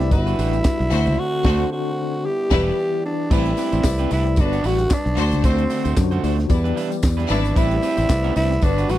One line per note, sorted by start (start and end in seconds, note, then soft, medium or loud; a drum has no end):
0.00 0.13 C2 medium
0.00 0.90 B2 medium
0.00 0.11 C3 medium
0.00 0.89 G3 medium
0.00 0.14 A3 medium
0.00 0.11 D4 medium
0.00 0.12 E4 medium
0.00 0.14 G4 medium
0.00 0.12 B4 medium
0.00 0.14 C5 medium
0.00 0.14 D5 loud
0.00 muted clean electric guitar stroke soft
0.00 snare soft
0.00 closed hi-hat soft
0.11 0.33 G1 loud
0.11 3.28 D3 medium
0.11 0.77 G3 medium
0.11 0.25 G3 medium
0.11 0.77 D4 medium
0.11 1.20 E4 loud
0.11 0.77 F#4 medium
0.11 0.25 F#4 medium
0.11 2.23 F#4 medium
0.11 0.25 B4 medium
0.11 0.77 B4 medium
0.11 muted clean electric guitar stroke soft
0.11 kick loud
0.11 closed hi-hat medium
0.11 tambourine soft
0.26 0.37 G3 medium
0.26 0.38 D4 medium
0.26 0.38 F#4 medium
0.26 0.39 B4 medium
0.26 closed hi-hat soft
0.26 tambourine soft
0.38 0.60 A1 medium
0.38 0.58 G3 medium
0.38 0.54 D4 medium
0.38 0.53 F#4 loud
0.38 0.53 B4 medium
0.38 open hi-hat medium
0.38 tambourine medium
0.53 muted clean electric guitar stroke medium
0.53 closed hi-hat medium
0.53 tambourine soft
0.64 muted clean electric guitar stroke soft
0.64 kick loud
0.64 snare loud
0.64 clap loud
0.64 tambourine medium
0.80 0.89 B1 medium
0.80 muted clean electric guitar stroke medium
0.80 closed hi-hat soft
0.91 1.08 D2 medium
0.91 1.18 D3 loud
0.91 2.23 A3 medium
0.91 1.14 A3 medium
0.91 2.23 C4 medium
0.91 1.18 D4 medium
0.91 1.14 F#4 medium
0.91 1.18 F#4 medium
0.91 1.14 C5 loud
0.91 1.19 C5 loud
0.91 open hi-hat medium
0.91 tambourine soft
1.06 1.16 C#2 medium
1.06 muted clean electric guitar stroke soft
1.06 closed hi-hat soft
1.19 1.72 F#4 loud
1.44 1.63 D2 loud
1.44 1.63 D3 loud
1.44 1.64 A3 loud
1.44 1.63 D4 medium
1.44 1.64 D4 loud
1.44 1.63 F#4 medium
1.44 1.64 F#4 loud
1.44 1.64 C5 medium
1.44 kick loud
1.44 snare loud
1.44 crash medium
1.72 2.27 F#4 medium
2.24 3.30 G3 medium
2.24 3.30 B3 medium
2.24 3.30 E4 medium
2.24 3.05 G4 loud
2.51 2.70 E1 loud
2.51 2.70 E3 loud
2.51 2.69 G3 medium
2.51 2.70 G3 loud
2.51 2.70 D4 loud
2.51 2.70 E4 loud
2.51 2.70 G4 loud
2.51 2.70 B4 loud
2.51 2.71 D5 loud
2.51 kick loud
2.51 snare loud
2.51 crash medium
3.05 3.34 D4 medium
3.30 3.52 A1 loud
3.30 3.44 G3 medium
3.30 3.70 A3 medium
3.30 3.50 C4 medium
3.30 3.50 D4 medium
3.30 3.44 E4 medium
3.30 4.11 E4 loud
3.30 3.70 G4 medium
3.30 3.51 G4 medium
3.30 3.44 B4 medium
3.30 3.71 B4 medium
3.30 3.51 B4 loud
3.30 3.71 C5 medium
3.30 3.71 D5 medium
3.30 kick loud
3.30 crash loud
3.30 tambourine medium
3.46 closed hi-hat soft
3.57 3.73 C4 medium
3.57 3.72 D4 medium
3.57 3.72 G4 medium
3.57 3.72 B4 medium
3.57 open hi-hat medium
3.57 tambourine medium
3.72 3.82 A1 loud
3.72 3.83 C4 medium
3.72 3.84 D4 medium
3.72 3.84 G4 medium
3.72 3.85 C5 medium
3.72 closed hi-hat soft
3.72 tambourine soft
3.84 4.06 C2 medium
3.84 4.37 A3 medium
3.84 4.37 G4 medium
3.84 4.38 B4 medium
3.84 4.38 C5 medium
3.84 4.38 D5 medium
3.84 muted clean electric guitar stroke soft
3.84 kick loud
3.84 snare loud
3.84 clap medium
3.84 tambourine loud
3.98 4.09 C4 medium
3.98 4.10 D4 medium
3.98 4.11 G4 medium
3.98 4.11 B4 medium
3.98 closed hi-hat medium
4.11 4.39 C2 medium
4.11 4.27 C4 medium
4.11 4.25 D4 medium
4.11 4.41 E4 medium
4.11 4.24 G4 medium
4.11 4.24 B4 medium
4.11 open hi-hat medium
4.11 tambourine medium
4.25 muted clean electric guitar stroke medium
4.25 closed hi-hat soft
4.36 4.59 G1 loud
4.36 5.02 G3 medium
4.36 4.50 G3 medium
4.36 5.03 D4 medium
4.36 4.68 D4 loud
4.36 4.50 F#4 medium
4.36 5.03 F#4 medium
4.36 4.45 A4 medium
4.36 4.50 B4 medium
4.36 muted clean electric guitar stroke soft
4.36 kick loud
4.36 closed hi-hat medium
4.36 tambourine medium
4.46 5.07 B4 medium
4.52 4.61 G3 soft
4.52 4.62 D4 medium
4.52 4.63 F#4 medium
4.52 4.63 B4 medium
4.52 closed hi-hat medium
4.52 tambourine soft
4.63 4.85 A1 medium
4.63 4.83 G3 medium
4.63 4.78 D4 medium
4.63 4.77 F#4 medium
4.63 4.95 F#4 loud
4.63 4.77 B4 loud
4.63 open hi-hat medium
4.63 tambourine soft
4.78 muted clean electric guitar stroke soft
4.78 closed hi-hat medium
4.78 tambourine soft
4.90 5.47 D4 loud
4.90 muted clean electric guitar stroke soft
4.90 kick loud
4.90 snare loud
4.90 clap loud
4.90 tambourine medium
5.05 5.15 B1 medium
5.05 muted clean electric guitar stroke soft
5.05 closed hi-hat soft
5.17 5.34 D2 loud
5.17 5.82 D3 medium
5.17 5.40 A3 loud
5.17 5.82 D4 medium
5.17 5.40 F#4 medium
5.17 5.83 F#4 medium
5.17 5.40 C5 loud
5.17 5.83 C5 medium
5.17 open hi-hat medium
5.17 tambourine medium
5.31 5.42 C#2 medium
5.31 muted clean electric guitar stroke soft
5.31 closed hi-hat medium
5.31 tambourine soft
5.43 5.65 D2 loud
5.43 5.62 A3 medium
5.43 5.56 A3 medium
5.43 5.98 C4 loud
5.43 5.63 D4 medium
5.43 5.56 F#4 medium
5.43 5.63 F#4 medium
5.43 5.56 C5 loud
5.43 5.63 C5 medium
5.43 kick loud
5.43 closed hi-hat medium
5.43 tambourine medium
5.58 closed hi-hat soft
5.70 5.85 A3 medium
5.70 5.85 D4 medium
5.70 5.84 F#4 medium
5.70 5.83 C5 medium
5.70 open hi-hat medium
5.70 tambourine medium
5.84 5.95 D2 loud
5.84 5.95 A3 medium
5.84 5.96 D4 medium
5.84 5.96 F#4 medium
5.84 5.96 C5 medium
5.84 closed hi-hat soft
5.84 tambourine soft
5.96 6.18 F#2 loud
5.96 6.50 D3 medium
5.96 6.50 D4 medium
5.96 6.04 F4 medium
5.96 6.50 C5 medium
5.96 muted clean electric guitar stroke soft
5.96 kick loud
5.96 snare loud
5.96 clap medium
5.96 tambourine loud
6.04 6.53 F#4 medium
6.11 6.22 A3 medium
6.11 6.23 D4 medium
6.11 6.23 F#4 medium
6.11 6.24 C5 medium
6.11 closed hi-hat soft
6.23 6.45 D2 loud
6.23 6.39 A3 medium
6.23 6.38 D4 medium
6.23 6.37 F#4 medium
6.23 6.37 C5 medium
6.23 open hi-hat medium
6.23 tambourine medium
6.38 muted clean electric guitar stroke medium
6.38 snare soft
6.38 closed hi-hat soft
6.49 6.71 E2 loud
6.49 7.35 E3 loud
6.49 6.62 G3 medium
6.49 7.35 B3 medium
6.49 6.62 E4 medium
6.49 7.36 G4 medium
6.49 6.62 B4 medium
6.49 7.36 D5 loud
6.49 muted clean electric guitar stroke soft
6.49 kick loud
6.49 closed hi-hat medium
6.49 tambourine medium
6.64 6.74 G3 medium
6.64 6.75 D4 medium
6.64 6.76 E4 medium
6.64 6.76 B4 medium
6.64 closed hi-hat medium
6.75 6.95 G3 medium
6.75 6.91 D4 medium
6.75 6.90 E4 medium
6.75 6.90 B4 medium
6.75 open hi-hat medium
6.75 tambourine medium
6.91 muted clean electric guitar stroke medium
6.91 closed hi-hat medium
6.91 tambourine soft
7.03 7.25 E2 medium
7.03 muted clean electric guitar stroke medium
7.03 kick loud
7.03 snare loud
7.03 clap loud
7.03 tambourine medium
7.17 7.28 G3 medium
7.17 7.29 D4 medium
7.17 7.29 E4 medium
7.17 7.30 B4 medium
7.17 closed hi-hat soft
7.29 7.51 G#1 medium
7.29 7.52 G3 loud
7.29 7.59 D4 loud
7.29 7.52 E4 loud
7.29 7.52 B4 loud
7.29 muted clean electric guitar stroke soft
7.29 open hi-hat medium
7.29 tambourine soft
7.44 muted clean electric guitar stroke soft
7.44 closed hi-hat medium
7.44 tambourine soft
7.55 7.78 A1 loud
7.55 7.69 G3 medium
7.55 7.95 A3 medium
7.55 7.75 C4 medium
7.55 7.75 D4 medium
7.55 7.69 E4 medium
7.55 8.36 E4 loud
7.55 7.96 G4 medium
7.55 7.76 G4 medium
7.55 7.69 B4 medium
7.55 7.96 B4 medium
7.55 7.76 B4 loud
7.55 7.96 C5 medium
7.55 7.96 D5 medium
7.55 kick loud
7.55 closed hi-hat medium
7.55 tambourine medium
7.71 closed hi-hat medium
7.82 7.97 C4 medium
7.82 7.97 D4 medium
7.82 7.96 G4 medium
7.82 7.97 B4 medium
7.82 open hi-hat medium
7.82 tambourine medium
7.97 8.07 A1 loud
7.97 8.07 C4 soft
7.97 8.08 D4 medium
7.97 8.08 G4 medium
7.97 8.09 C5 medium
7.97 closed hi-hat soft
7.97 tambourine soft
8.09 8.31 C2 medium
8.09 8.62 A3 medium
8.09 8.62 G4 medium
8.09 8.61 B4 medium
8.09 8.63 C5 medium
8.09 8.63 D5 medium
8.09 muted clean electric guitar stroke soft
8.09 kick loud
8.09 snare loud
8.09 clap medium
8.09 tambourine loud
8.23 8.35 C4 medium
8.23 8.35 D4 medium
8.23 8.36 G4 medium
8.23 8.36 B4 medium
8.23 closed hi-hat medium
8.36 8.57 C2 loud
8.36 8.52 C4 medium
8.36 8.51 D4 medium
8.36 8.65 E4 loud
8.36 8.50 G4 medium
8.36 8.49 B4 medium
8.36 open hi-hat medium
8.36 tambourine medium
8.50 muted clean electric guitar stroke medium
8.50 snare soft
8.50 closed hi-hat soft
8.61 8.84 G1 loud
8.61 8.98 G3 medium
8.61 8.75 G3 medium
8.61 8.98 D4 medium
8.61 8.92 D4 loud
8.61 8.75 F#4 medium
8.61 8.98 F#4 medium
8.61 8.75 B4 medium
8.61 8.98 B4 medium
8.61 muted clean electric guitar stroke soft
8.61 kick loud
8.61 closed hi-hat medium
8.61 tambourine soft
8.78 8.88 G3 medium
8.78 8.89 D4 medium
8.78 8.89 F#4 medium
8.78 8.89 B4 medium
8.78 closed hi-hat soft
8.78 tambourine soft
8.89 8.98 A1 medium
8.89 8.98 G3 medium
8.89 8.98 D4 medium
8.89 8.98 F#4 loud
8.89 8.98 B4 loud
8.89 open hi-hat medium
8.89 tambourine medium